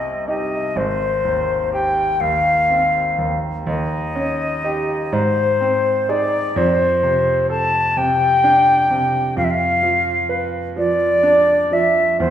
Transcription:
0.00 0.72 C2 medium
0.00 0.57 C4 soft
0.00 0.26 D#5 medium
0.28 0.72 D#4 soft
0.28 0.73 G4 soft
0.28 0.79 D#5 medium
0.76 3.63 G#1 medium
0.76 1.73 C5 medium
1.25 2.01 D#2 soft
1.72 2.50 G4 soft
1.72 2.22 G5 medium
2.21 2.99 D#2 soft
2.21 3.39 F5 medium
2.70 3.48 C4 soft
3.19 3.65 D#2 soft
3.67 5.08 D#2 medium
3.67 5.15 D#5 medium
4.15 4.93 C#4 soft
4.64 5.09 D#4 soft
4.64 5.09 G4 soft
5.12 6.52 G#2 medium
5.12 6.11 C5 medium
5.61 6.37 C4 medium
6.09 6.52 D#4 soft
6.09 6.52 G#4 soft
6.09 6.59 D5 medium
6.56 9.33 F2 medium
6.56 7.49 C5 medium
7.03 7.78 C3 soft
7.50 8.25 A4 soft
7.50 7.99 A5 medium
7.97 8.72 C3 soft
7.97 9.37 G5 loud
8.44 9.18 D4 soft
8.91 9.37 C3 soft
9.37 12.16 F2 medium
9.37 9.46 F5 medium
9.44 9.52 E5 medium
9.51 10.49 F5 loud
9.83 10.58 F3 soft
10.29 11.05 B4 soft
10.76 11.52 F3 soft
10.76 11.75 D5 medium
11.23 12.00 D4 medium
11.71 12.20 F3 soft
11.71 12.20 E5 medium
12.20 12.30 E2 medium
12.20 12.30 C5 medium

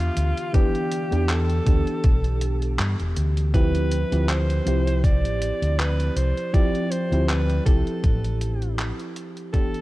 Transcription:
0.00 0.49 D3 medium
0.00 0.53 E3 medium
0.00 0.53 B3 medium
0.00 0.54 D4 medium
0.00 0.53 F4 loud
0.00 0.55 G4 medium
0.00 closed hi-hat soft
0.17 0.31 D2 loud
0.17 closed hi-hat medium
0.37 closed hi-hat soft
0.53 1.07 E3 loud
0.53 1.07 B3 medium
0.53 1.07 D4 medium
0.53 1.31 G4 loud
0.53 1.07 G4 loud
0.53 kick loud
0.53 closed hi-hat medium
0.75 closed hi-hat soft
0.91 closed hi-hat medium
1.11 1.59 E2 loud
1.11 1.62 E3 medium
1.11 1.62 B3 medium
1.11 1.62 D4 medium
1.11 1.63 G4 loud
1.11 closed hi-hat soft
1.29 2.79 A4 loud
1.29 clap loud
1.29 closed hi-hat medium
1.50 closed hi-hat soft
1.65 1.81 D2 loud
1.65 3.49 E3 medium
1.65 3.50 B3 medium
1.65 3.50 D4 medium
1.65 3.51 G4 medium
1.65 kick loud
1.65 closed hi-hat medium
1.87 closed hi-hat soft
2.04 2.79 B1 medium
2.04 kick loud
2.04 closed hi-hat medium
2.24 closed hi-hat soft
2.41 closed hi-hat loud
2.62 closed hi-hat soft
2.79 2.94 G2 medium
2.79 clap loud
2.79 closed hi-hat medium
3.00 3.12 E1 medium
3.00 closed hi-hat soft
3.16 4.03 D2 medium
3.16 closed hi-hat medium
3.37 closed hi-hat soft
3.54 4.07 F3 medium
3.54 4.07 C4 medium
3.54 4.07 E4 medium
3.54 4.08 G4 loud
3.54 4.31 B4 loud
3.54 kick loud
3.54 closed hi-hat medium
3.75 closed hi-hat soft
3.91 closed hi-hat medium
4.11 4.59 D2 loud
4.11 4.62 F3 medium
4.11 4.62 C4 medium
4.11 4.62 E4 medium
4.11 4.63 G4 medium
4.11 closed hi-hat soft
4.29 5.06 C5 loud
4.29 clap loud
4.29 closed hi-hat medium
4.50 closed hi-hat soft
4.65 5.25 C2 medium
4.65 6.49 F3 medium
4.65 6.49 C4 medium
4.65 6.50 E4 medium
4.65 6.50 G4 medium
4.65 closed hi-hat medium
4.87 closed hi-hat soft
5.04 5.80 D5 loud
5.04 kick loud
5.04 closed hi-hat medium
5.25 5.50 A1 medium
5.25 closed hi-hat soft
5.42 closed hi-hat medium
5.62 6.09 D2 medium
5.62 closed hi-hat soft
5.79 6.18 B4 loud
5.79 clap loud
5.79 closed hi-hat medium
6.00 closed hi-hat soft
6.16 6.31 C2 loud
6.16 6.55 C5 loud
6.16 closed hi-hat medium
6.37 closed hi-hat soft
6.53 7.07 F3 loud
6.53 7.07 C4 medium
6.53 7.07 E4 medium
6.53 7.07 G4 loud
6.53 6.92 D5 loud
6.53 kick loud
6.53 closed hi-hat medium
6.75 closed hi-hat soft
6.91 7.30 C5 loud
6.91 closed hi-hat medium
7.11 7.58 D2 loud
7.11 7.62 F3 medium
7.11 7.62 C4 medium
7.11 7.63 E4 medium
7.11 7.63 G4 loud
7.11 closed hi-hat soft
7.29 7.65 B4 loud
7.29 clap loud
7.29 closed hi-hat medium
7.50 closed hi-hat soft
7.65 7.81 C2 medium
7.65 9.49 F3 medium
7.65 9.49 C4 medium
7.65 9.50 E4 medium
7.65 9.50 G4 medium
7.65 8.75 A4 medium
7.65 kick loud
7.65 closed hi-hat medium
7.87 closed hi-hat soft
8.04 8.90 A1 medium
8.04 kick loud
8.04 closed hi-hat medium
8.24 closed hi-hat soft
8.41 closed hi-hat medium
8.62 closed hi-hat soft
8.79 clap loud
8.79 closed hi-hat medium
9.00 closed hi-hat soft
9.16 closed hi-hat medium
9.37 closed hi-hat soft
9.53 9.81 E3 medium
9.53 9.81 B3 medium
9.53 9.81 D4 medium
9.53 9.81 G4 loud
9.53 9.81 A4 loud
9.53 kick loud
9.53 closed hi-hat medium
9.74 closed hi-hat soft

